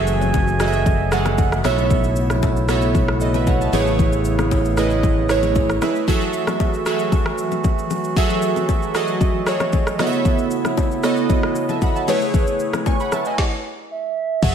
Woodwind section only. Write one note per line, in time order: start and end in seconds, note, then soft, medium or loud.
0.00 1.60 E3 medium
0.00 1.60 F#3 medium
0.00 12.04 A3 medium
0.00 1.62 G#5 medium
1.64 5.91 C#3 medium
1.64 5.91 B3 medium
1.64 3.71 E4 medium
3.73 5.91 G#4 medium
6.08 9.95 E3 medium
6.08 9.95 F#3 medium
6.08 9.95 F#4 medium
9.99 13.35 C#3 medium
9.99 13.35 B3 medium
9.99 12.06 E4 medium
12.08 13.37 A3 medium
12.08 13.37 G#4 medium
14.42 14.55 E3 medium
14.42 14.55 F#3 medium
14.42 14.55 C#4 medium
14.42 14.55 F#4 medium